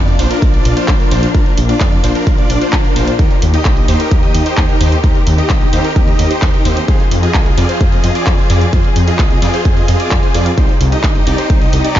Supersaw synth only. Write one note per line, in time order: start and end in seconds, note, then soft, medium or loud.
0.00 0.16 D4 medium
0.00 0.16 F4 medium
0.00 0.16 D5 medium
0.19 0.28 D4 loud
0.19 0.28 F4 loud
0.19 0.28 C5 loud
0.31 0.39 D4 medium
0.31 0.39 F4 medium
0.31 0.39 A#4 loud
0.42 0.52 D4 medium
0.42 0.52 F4 medium
0.42 0.52 A#4 loud
0.54 0.73 D4 medium
0.54 0.73 F4 medium
0.54 0.73 D5 loud
0.77 0.97 D4 loud
0.77 0.97 F4 medium
0.77 0.97 C5 loud
1.00 1.09 D4 medium
1.00 1.09 F4 medium
1.00 1.09 A#4 medium
1.11 1.27 D4 medium
1.11 1.27 F4 medium
1.11 1.27 C5 medium
1.35 1.50 D4 medium
1.35 1.50 F4 medium
1.35 1.50 A#4 medium
1.69 1.79 D4 medium
1.69 1.79 F4 medium
1.69 1.79 D5 medium
1.81 2.01 D4 medium
1.81 2.01 F4 medium
1.81 2.01 D5 medium
2.04 2.13 D4 loud
2.04 2.13 F4 medium
2.04 2.13 C5 loud
2.15 2.24 D4 medium
2.15 2.24 F4 medium
2.15 2.24 A#4 loud
2.27 2.37 D4 medium
2.27 2.37 F4 medium
2.27 2.37 A#4 loud
2.38 2.58 D4 medium
2.38 2.58 F4 medium
2.38 2.58 D5 loud
2.61 2.82 D4 medium
2.61 2.82 F4 medium
2.61 2.82 C5 loud
2.85 2.93 D4 medium
2.85 2.93 F4 medium
2.85 2.93 A#4 medium
2.96 3.12 D4 medium
2.96 3.12 F4 medium
2.96 3.12 C5 medium
3.19 3.35 D#4 medium
3.19 3.35 G4 medium
3.19 3.35 A#4 medium
3.54 3.64 D#4 medium
3.54 3.64 G4 medium
3.54 3.64 D#5 medium
3.65 3.86 D#4 medium
3.65 3.86 G4 medium
3.65 3.86 D#5 medium
3.88 3.97 D#4 loud
3.88 3.97 G4 medium
3.88 3.97 C5 loud
4.00 4.09 D#4 medium
4.00 4.09 G4 medium
4.00 4.09 A#4 loud
4.11 4.21 D#4 medium
4.11 4.21 G4 medium
4.11 4.21 A#4 medium
4.23 4.43 D#4 medium
4.23 4.43 G4 medium
4.23 4.43 D#5 loud
4.46 4.66 D#4 medium
4.46 4.66 G4 medium
4.46 4.66 C5 loud
4.69 4.78 D#4 medium
4.69 4.78 G4 medium
4.69 4.78 A#4 medium
4.81 4.96 D#4 medium
4.81 4.96 G4 medium
4.81 4.96 C5 medium
5.04 5.19 D#4 medium
5.04 5.19 G4 medium
5.04 5.19 A#4 loud
5.38 5.48 D#4 medium
5.38 5.48 G4 medium
5.38 5.48 D#5 medium
5.50 5.70 D#4 medium
5.50 5.70 G4 medium
5.50 5.70 D#5 medium
5.73 5.82 D#4 loud
5.73 5.82 G4 loud
5.73 5.82 C5 loud
5.84 5.93 D#4 medium
5.84 5.93 G4 medium
5.84 5.93 A#4 loud
5.96 6.06 D#4 medium
5.96 6.06 G4 medium
5.96 6.06 A#4 medium
6.08 6.27 D#4 medium
6.08 6.27 G4 medium
6.08 6.27 D#5 loud
6.31 6.51 D#4 medium
6.31 6.51 G4 medium
6.31 6.51 C5 loud
6.54 6.63 D#4 medium
6.54 6.63 G4 medium
6.54 6.63 A#4 medium
6.65 6.81 D#4 medium
6.65 6.81 G4 medium
6.65 6.81 C5 loud
6.88 7.04 F4 medium
6.88 7.04 G#4 medium
6.88 7.04 C5 loud
7.23 7.33 F4 medium
7.23 7.33 G#4 medium
7.23 7.33 D#5 medium
7.34 7.55 F4 medium
7.34 7.55 G#4 medium
7.34 7.55 D#5 medium
7.58 7.66 F4 loud
7.58 7.66 G#4 medium
7.58 7.66 D5 loud
7.69 7.78 F4 medium
7.69 7.78 G#4 medium
7.69 7.78 C5 loud
7.81 7.91 F4 medium
7.81 7.91 G#4 medium
7.81 7.91 C5 loud
7.92 8.12 F4 medium
7.92 8.12 G#4 medium
7.92 8.12 D#5 loud
8.15 8.36 F4 loud
8.15 8.36 G#4 medium
8.15 8.36 D5 loud
8.38 8.47 F4 medium
8.38 8.47 G#4 medium
8.38 8.47 C5 medium
8.50 8.66 F4 medium
8.50 8.66 G#4 medium
8.50 8.66 D5 loud
8.73 8.89 F4 medium
8.73 8.89 G#4 medium
8.73 8.89 C5 loud
9.08 9.17 F4 medium
9.08 9.17 G#4 medium
9.08 9.17 D#5 medium
9.19 9.39 F4 medium
9.19 9.39 G#4 medium
9.19 9.39 D#5 medium
9.42 9.51 F4 loud
9.42 9.51 G#4 medium
9.42 9.51 D5 loud
9.54 9.63 F4 loud
9.54 9.63 G#4 medium
9.54 9.63 C5 loud
9.65 9.75 F4 medium
9.65 9.75 G#4 medium
9.65 9.75 C5 medium
9.77 9.96 F4 loud
9.77 9.96 G#4 medium
9.77 9.96 D#5 loud
10.00 10.20 F4 loud
10.00 10.20 G#4 medium
10.00 10.20 D5 loud
10.23 10.32 F4 medium
10.23 10.32 G#4 medium
10.23 10.32 C5 medium
10.34 10.50 F4 medium
10.34 10.50 G#4 medium
10.34 10.50 D5 medium
10.58 10.73 D#4 medium
10.58 10.73 G4 medium
10.58 10.73 C5 medium
10.92 11.02 D#4 medium
10.92 11.02 G4 medium
10.92 11.02 D#5 medium
11.04 11.24 D#4 medium
11.04 11.24 G4 medium
11.04 11.24 D#5 medium
11.27 11.36 D#4 loud
11.27 11.36 G4 medium
11.27 11.36 D5 loud
11.38 11.47 D#4 medium
11.38 11.47 G4 medium
11.38 11.47 C5 loud
11.50 11.60 D#4 medium
11.50 11.60 G4 medium
11.50 11.60 C5 medium
11.61 11.81 D#4 medium
11.61 11.81 G4 medium
11.61 11.81 D#5 loud
11.85 12.00 D#4 loud
11.85 12.00 G4 medium
11.85 12.00 D5 loud